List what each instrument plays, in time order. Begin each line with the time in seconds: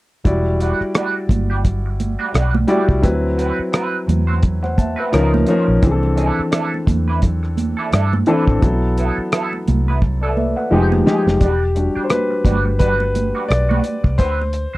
0.24 fingered electric bass E1, grand piano G3 E4 F#4 D5, kick, closed hi-hat
0.60 clean electric guitar G3 D4 F#4, closed hi-hat
0.81 muted fingered electric bass stroke, cross-stick
0.95 clean electric guitar G3 D4 F#4, cross-stick, closed hi-hat, muted conga
1.29 fingered electric bass G1, muted clean electric guitar stroke, kick, closed hi-hat, high conga, low conga
1.50 clean electric guitar G3 D4 G4
1.64 muted clean electric guitar stroke, kick, closed hi-hat, muted conga, low conga
1.86 muted clean electric guitar stroke
2.00 closed hi-hat, high conga
2.19 clean electric guitar G3 D4 F#4
2.33 fingered electric bass B1, clean electric guitar G3 D4 F#4, cross-stick, closed hi-hat, muted conga
2.53 muted clean electric guitar stroke, muted conga, high conga
2.67 grand piano G3 E4 F#4 D5, clean electric guitar G3 D4 G4, closed hi-hat
2.88 fingered electric bass C2, muted clean electric guitar stroke, kick
3.02 fingered electric bass D2, grand piano F#3 C4 E4 B4, kick, closed hi-hat
3.37 clean electric guitar C4 F#4 B4, closed hi-hat
3.59 muted fingered electric bass stroke
3.72 clean electric guitar C4 F#4 B4, cross-stick, closed hi-hat, muted conga
4.07 fingered electric bass E2, muted clean electric guitar stroke, closed hi-hat, high conga, low conga
4.27 clean electric guitar C4 F#4 C5
4.42 muted clean electric guitar stroke, kick, closed hi-hat, low conga
4.63 grand piano C5 F#5, muted clean electric guitar stroke, cross-stick, muted conga
4.78 grand piano E5 A5, kick, closed hi-hat, high conga
4.96 clean electric guitar C4 F#4 B4, grand piano B4 E5
5.11 fingered electric bass C#2, grand piano F3 C#4 D#4 A#4, clean electric guitar D#4 F4 A#4, cross-stick, closed hi-hat
5.32 muted clean electric guitar stroke, muted conga, high conga
5.46 grand piano F3 C#4 D#4 A#4, clean electric guitar D#4 F4 C5, closed hi-hat
5.67 fingered electric bass A#1, muted clean electric guitar stroke
5.82 fingered electric bass C2, grand piano E3 C4 D4 G#4, kick, closed hi-hat, muted conga
5.91 grand piano A4
6.03 muted conga
6.16 clean electric guitar D4 E4 A4, closed hi-hat
6.39 muted fingered electric bass stroke
6.51 clean electric guitar D4 E4 A4, cross-stick, closed hi-hat, muted conga
6.74 muted conga
6.87 fingered electric bass E2, muted clean electric guitar stroke, kick, closed hi-hat, high conga, low conga
7.08 clean electric guitar D4 E4 B4
7.22 muted clean electric guitar stroke, kick, closed hi-hat, muted conga, low conga
7.43 muted clean electric guitar stroke, cross-stick
7.57 closed hi-hat, high conga
7.77 clean electric guitar D4 E4 A4
7.92 fingered electric bass G2, clean electric guitar D4 E4 A4, cross-stick, closed hi-hat, muted conga
8.13 muted clean electric guitar stroke, high conga
8.26 grand piano E3 C4 D4 A4, clean electric guitar D4 E4, closed hi-hat
8.30 clean electric guitar B4
8.47 fingered electric bass A1, muted clean electric guitar stroke, kick
8.61 fingered electric bass B1, grand piano F#3 B3 E4 A4, kick, closed hi-hat, muted conga
8.98 clean electric guitar B3 E4 A4, closed hi-hat
9.18 muted fingered electric bass stroke
9.32 clean electric guitar B3 E4 A4, cross-stick, closed hi-hat
9.53 muted conga
9.68 fingered electric bass C2, muted clean electric guitar stroke, closed hi-hat, high conga, low conga
9.88 clean electric guitar B3 E4 B4
10.02 muted clean electric guitar stroke, kick, muted conga, low conga
10.21 clean electric guitar B3 E4 A4, grand piano A4 D5
10.36 grand piano B4 E5, muted clean electric guitar stroke, high conga
10.56 grand piano B4 F#5, muted clean electric guitar stroke
10.71 fingered electric bass F1, grand piano F3 G#3 D#4 G4, clean electric guitar G#3 D#4 G4
10.92 muted clean electric guitar stroke, muted conga, high conga
11.05 grand piano F3 G#3 D#4 G4, clean electric guitar G#3 D#4 G#4, snare
11.26 fingered electric bass F1, muted clean electric guitar stroke, snare
11.40 fingered electric bass E1, clean electric guitar G3 D4 F#4, grand piano G4, kick, closed hi-hat
11.75 grand piano G3 D4 F#4, muted clean electric guitar stroke, closed hi-hat
11.95 clean electric guitar G3 D4 G4, muted fingered electric bass stroke
12.04 grand piano C5
12.10 grand piano B4, cross-stick, closed hi-hat, high conga
12.31 muted clean electric guitar stroke
12.45 fingered electric bass G1, clean electric guitar G3 D4 F#4, kick, closed hi-hat, high conga, low conga
12.65 muted clean electric guitar stroke
12.79 clean electric guitar G3 D4 F#4, grand piano B4, kick, closed hi-hat, low conga
13.00 muted conga
13.15 muted clean electric guitar stroke, closed hi-hat, high conga
13.35 clean electric guitar G3 D4 F#4
13.48 fingered electric bass B1, grand piano D5, muted clean electric guitar stroke, cross-stick, closed hi-hat, muted conga
13.69 clean electric guitar G3 D4 F#4, high conga
13.84 muted clean electric guitar stroke, closed hi-hat
14.04 fingered electric bass C2, muted clean electric guitar stroke, kick
14.18 fingered electric bass D2, clean electric guitar C4 F#4 B4, grand piano C5, kick, closed hi-hat, muted conga
14.42 muted conga
14.53 muted clean electric guitar stroke, closed hi-hat
14.74 clean electric guitar C5, muted fingered electric bass stroke